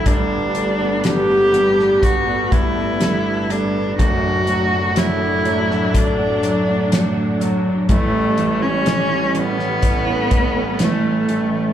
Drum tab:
HH |x-x-x-x-x-x-x-x-|x-x-x-x-x-x-x-x-|x-x-x-x-x-x-x-x-|
SD |----o--o----o---|----o--o----o---|----o--o----o---|
BD |o-------o-o-----|o-------o-------|o-------o-o-----|